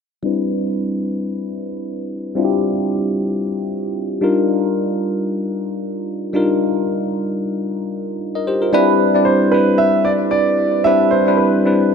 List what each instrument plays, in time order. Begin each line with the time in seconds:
0.23 tine electric piano G3 C4 D4 E4 B4
2.35 tine electric piano G3 C4 D4 E4 F4
2.44 tine electric piano G4
4.21 tine electric piano G3 D4 D#4 F4 A#4
6.33 tine electric piano G3 D4 D#4 F4 A#4
8.35 tine electric piano A#4 D#5
8.47 tine electric piano G4 C5
8.62 tine electric piano F4 A#4
8.73 tine electric piano G3 C4 D4 E4 B4
9.14 tine electric piano G3 C4 D4 E4 D5
9.25 grand piano C5
9.52 tine electric piano G3 C4 D4 E4 B4, grand piano B4
9.78 grand piano E5
10.05 grand piano D5
10.31 grand piano D5
10.84 tine electric piano G3 C4 D4 E4 B4, grand piano E5
11.11 grand piano C5
11.27 tine electric piano G3 C4 D4 E4 B4
11.37 grand piano B4
11.65 tine electric piano G3 C4 D4 E4 B4